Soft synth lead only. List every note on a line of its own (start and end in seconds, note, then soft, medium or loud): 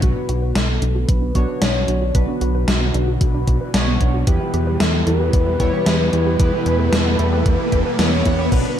0.03 0.57 F#4 loud
0.56 1.10 A4 loud
1.09 1.61 B4 loud
1.62 2.16 C#5 loud
2.15 2.41 B4 loud
2.41 3.97 F#4 loud
4.27 4.82 G4 loud
4.80 5.06 A4 loud
5.07 7.95 B4 loud
7.99 8.48 C#5 loud
8.52 8.80 B4 loud